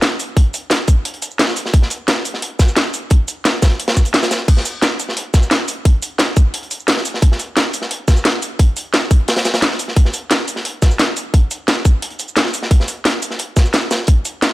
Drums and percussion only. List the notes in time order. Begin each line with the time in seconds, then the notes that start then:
0.02 snare, closed hi-hat
0.20 closed hi-hat, shaker
0.37 kick, closed hi-hat
0.54 closed hi-hat, shaker
0.70 snare, closed hi-hat
0.88 kick, closed hi-hat, shaker
1.05 closed hi-hat
1.14 closed hi-hat
1.22 closed hi-hat, shaker
1.31 shaker
1.39 snare, closed hi-hat
1.48 snare
1.57 closed hi-hat, shaker
1.66 snare
1.74 kick, closed hi-hat
1.82 snare
1.90 closed hi-hat, shaker
2.08 snare, closed hi-hat
2.25 closed hi-hat, shaker
2.34 snare
2.42 closed hi-hat
2.59 kick, snare, closed hi-hat, shaker
2.68 shaker
2.76 snare, closed hi-hat
2.94 closed hi-hat, shaker
3.10 kick, closed hi-hat
3.28 closed hi-hat, shaker
3.45 snare, closed hi-hat
3.62 kick, snare, closed hi-hat, shaker
3.79 closed hi-hat
3.88 snare, closed hi-hat
3.97 kick, closed hi-hat, shaker
4.05 closed hi-hat, shaker
4.14 snare, closed hi-hat
4.23 snare, closed hi-hat, shaker
4.31 snare, closed hi-hat, shaker
4.48 kick, closed hi-hat, crash
4.57 snare
4.65 closed hi-hat, shaker
4.82 snare, closed hi-hat
5.00 closed hi-hat, shaker
5.09 snare
5.17 closed hi-hat
5.34 kick, snare, closed hi-hat, shaker
5.43 shaker
5.51 snare, closed hi-hat
5.68 closed hi-hat, shaker
5.85 kick, closed hi-hat
6.02 closed hi-hat, shaker
6.19 snare, closed hi-hat
6.36 kick, closed hi-hat, shaker
6.54 closed hi-hat
6.63 closed hi-hat
6.71 closed hi-hat, shaker
6.80 shaker
6.88 snare, closed hi-hat
6.97 snare
7.05 closed hi-hat, shaker
7.14 snare
7.22 kick, closed hi-hat
7.32 snare
7.39 closed hi-hat, shaker
7.57 snare, closed hi-hat
7.73 closed hi-hat, shaker
7.82 snare
7.91 closed hi-hat
8.08 kick, snare, closed hi-hat, shaker
8.17 shaker
8.25 snare, closed hi-hat
8.42 closed hi-hat, shaker
8.59 kick, closed hi-hat
8.77 closed hi-hat, shaker
8.94 snare, closed hi-hat
9.11 kick, closed hi-hat, shaker
9.28 snare, closed hi-hat
9.36 snare, closed hi-hat
9.45 snare, closed hi-hat, shaker
9.54 snare, closed hi-hat, shaker
9.62 snare, closed hi-hat
9.71 snare
9.79 closed hi-hat, shaker
9.88 snare
9.96 kick, closed hi-hat
10.05 snare
10.14 closed hi-hat, shaker
10.30 snare, closed hi-hat
10.48 closed hi-hat, shaker
10.56 snare
10.65 closed hi-hat
10.82 kick, snare, closed hi-hat, shaker
10.91 shaker
10.99 snare, closed hi-hat
11.16 closed hi-hat, shaker
11.34 kick, closed hi-hat
11.51 closed hi-hat, shaker
11.68 snare, closed hi-hat
11.85 kick, closed hi-hat, shaker
12.02 closed hi-hat
12.10 closed hi-hat
12.19 closed hi-hat, shaker
12.28 shaker
12.36 snare, closed hi-hat
12.46 snare
12.54 closed hi-hat, shaker
12.63 snare
12.71 kick, closed hi-hat
12.80 snare
12.88 closed hi-hat, shaker
13.05 snare, closed hi-hat
13.22 closed hi-hat, shaker
13.31 snare
13.39 closed hi-hat
13.57 kick, snare, closed hi-hat, shaker
13.65 shaker
13.73 snare, closed hi-hat
13.91 snare, closed hi-hat, shaker
14.07 kick, closed hi-hat
14.25 closed hi-hat, shaker
14.42 snare, closed hi-hat